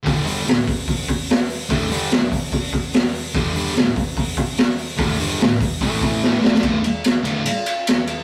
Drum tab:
RD |----------------|----------------|----------------|----------------|
HH |o-o-o-o-o-o-o-o-|o-o-o-o-o-o-o-o-|o-o-o-o-o-o-o-o-|o-o-o-o-o-o-----|
SD |----o-------o---|----o-------o---|----o-------o---|----o-------o-oo|
BD |o-----o-o-o-----|o-----o-o-o-----|o-----o-o-o-----|o-----o-o-o-----|

RD |x-x-x-x-x-x-x-x-|
HH |----------------|
SD |----o-------o---|
BD |o---------------|